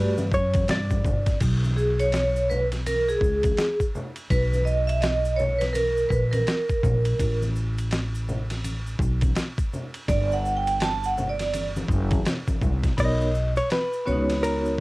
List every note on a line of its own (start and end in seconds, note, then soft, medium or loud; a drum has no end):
0.00 0.26 G2 loud
0.00 0.14 A3 medium
0.00 0.14 F#4 medium
0.00 0.14 G4 medium
0.00 0.29 B4 medium
0.00 0.15 D5 medium
0.18 high conga medium
0.18 shaker medium
0.32 0.62 F#2 medium
0.32 0.70 C#5 loud
0.32 kick medium
0.32 shaker soft
0.53 kick loud
0.53 ride medium
0.53 high conga medium
0.53 shaker soft
0.68 0.99 G2 medium
0.68 1.38 D5 medium
0.68 snare loud
0.68 hi-hat pedal soft
0.68 ride medium
0.68 low conga medium
0.68 shaker medium
0.90 kick medium
0.90 high conga medium
0.90 shaker soft
1.05 1.35 G1 medium
1.05 kick medium
1.05 low conga medium
1.05 shaker soft
1.26 kick loud
1.26 snare soft
1.26 ride medium
1.26 shaker soft
1.40 3.18 B1 loud
1.40 kick loud
1.40 crash loud
1.40 ride medium
1.40 shaker medium
1.64 high conga soft
1.64 shaker soft
1.76 2.00 G#4 medium
1.76 shaker soft
1.99 2.51 C#5 loud
1.99 ride soft
1.99 shaker soft
2.12 snare loud
2.12 hi-hat pedal soft
2.12 ride medium
2.12 shaker medium
2.36 shaker soft
2.50 2.66 B4 medium
2.50 low conga medium
2.50 shaker soft
2.72 snare soft
2.72 ride medium
2.72 shaker soft
2.86 3.09 A#4 loud
2.86 ride medium
2.86 high conga soft
2.86 shaker medium
3.09 3.77 G#4 medium
3.09 shaker soft
3.21 3.52 C#2 medium
3.21 kick medium
3.21 shaker soft
3.43 kick loud
3.43 ride medium
3.43 high conga medium
3.43 shaker soft
3.57 snare loud
3.57 hi-hat pedal soft
3.57 ride medium
3.57 shaker medium
3.80 kick medium
3.80 shaker soft
3.95 low conga medium
3.95 shaker soft
4.16 ride medium
4.16 shaker soft
4.30 6.07 B1 loud
4.30 4.68 B4 medium
4.30 kick loud
4.30 ride medium
4.30 shaker medium
4.54 high conga soft
4.54 shaker soft
4.65 4.89 D#5 medium
4.65 shaker soft
4.87 5.01 E5 loud
4.87 ride soft
4.87 shaker soft
5.01 5.39 D#5 loud
5.01 snare loud
5.01 hi-hat pedal medium
5.01 ride medium
5.01 shaker medium
5.25 shaker soft
5.36 5.60 C#5 loud
5.36 low conga medium
5.36 shaker soft
5.59 5.74 B4 medium
5.59 snare soft
5.59 ride medium
5.59 shaker soft
5.73 6.11 A#4 medium
5.73 ride medium
5.73 high conga soft
5.73 shaker medium
5.97 shaker medium
6.09 6.41 A#1 medium
6.09 6.33 B4 medium
6.09 kick medium
6.09 shaker soft
6.31 7.37 A#4 medium
6.31 ride medium
6.31 high conga medium
6.31 shaker soft
6.47 snare loud
6.47 hi-hat pedal soft
6.47 ride medium
6.47 shaker medium
6.69 kick medium
6.69 shaker soft
6.83 7.13 A#1 loud
6.83 kick medium
6.83 low conga medium
6.83 shaker soft
7.05 ride medium
7.05 shaker soft
7.19 8.96 A1 loud
7.19 kick loud
7.19 ride medium
7.19 shaker medium
7.42 high conga soft
7.42 shaker soft
7.56 shaker soft
7.78 ride medium
7.78 shaker soft
7.91 snare loud
7.91 hi-hat pedal medium
7.91 ride medium
7.91 shaker medium
8.15 shaker soft
8.29 low conga medium
8.29 shaker soft
8.50 snare soft
8.50 ride medium
8.50 shaker soft
8.65 ride medium
8.65 high conga soft
8.65 shaker medium
8.87 shaker medium
8.99 9.30 B1 loud
8.99 kick loud
8.99 shaker soft
9.21 kick loud
9.21 ride medium
9.21 high conga medium
9.21 shaker soft
9.36 snare loud
9.36 hi-hat pedal soft
9.36 ride medium
9.36 shaker medium
9.58 kick medium
9.58 shaker soft
9.73 low conga medium
9.73 shaker soft
9.94 ride medium
9.94 shaker soft
10.08 11.85 G1 loud
10.08 10.33 D5 medium
10.08 kick loud
10.08 ride medium
10.08 shaker medium
10.31 10.58 F#5 medium
10.31 shaker soft
10.45 shaker soft
10.57 10.82 G5 medium
10.67 ride medium
10.67 shaker soft
10.80 11.06 A5 loud
10.80 snare loud
10.80 hi-hat pedal medium
10.80 ride medium
10.80 shaker medium
11.04 11.16 F#5 loud
11.04 shaker soft
11.18 low conga medium
11.18 shaker soft
11.29 11.63 D5 medium
11.39 snare soft
11.39 ride medium
11.39 shaker soft
11.54 ride medium
11.54 high conga soft
11.54 shaker medium
11.76 high conga medium
11.76 shaker medium
11.88 12.19 F#1 loud
11.88 kick medium
11.88 shaker soft
12.11 kick loud
12.11 ride medium
12.11 high conga medium
12.11 shaker soft
12.25 snare loud
12.25 hi-hat pedal soft
12.25 ride medium
12.25 low conga medium
12.25 shaker medium
12.48 kick medium
12.48 high conga medium
12.48 shaker soft
12.62 12.92 C2 medium
12.62 kick medium
12.62 low conga medium
12.62 shaker soft
12.83 kick loud
12.83 snare soft
12.83 ride medium
12.83 shaker soft
12.97 13.58 B1 loud
12.97 13.25 B3 medium
12.97 13.25 D#4 medium
12.97 13.26 A#4 medium
12.97 13.26 C#5 medium
12.97 13.53 D#5 loud
12.97 kick loud
12.97 crash medium
12.97 ride medium
12.97 shaker medium
13.21 shaker soft
13.35 shaker soft
13.56 13.71 C#5 medium
13.56 ride soft
13.56 shaker soft
13.70 14.45 B4 medium
13.70 snare loud
13.70 hi-hat pedal medium
13.70 ride medium
13.70 shaker medium
13.93 shaker soft
14.05 14.80 C#2 medium
14.05 14.80 B3 medium
14.05 14.14 C#4 medium
14.05 14.80 F#4 medium
14.05 14.80 C#5 medium
14.05 low conga medium
14.05 shaker soft
14.12 14.80 D#4 medium
14.29 snare soft
14.29 ride medium
14.29 shaker soft
14.43 14.80 A#4 loud
14.43 ride medium
14.43 shaker medium
14.65 shaker soft